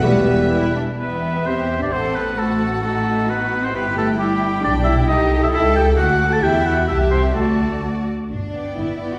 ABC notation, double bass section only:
X:1
M:2/4
L:1/8
Q:1/4=131
K:Em
V:1 name="Double bass section" clef=bass
E,,,3 z | E,,4 | A,,,4- | A,,,4 |
G,,,4 | [K:G] B,,,2 C,,2 | ^C,,2 D,,2 | E,,2 C,,2 |
D,,3 z | G,,,2 G,,,2 |]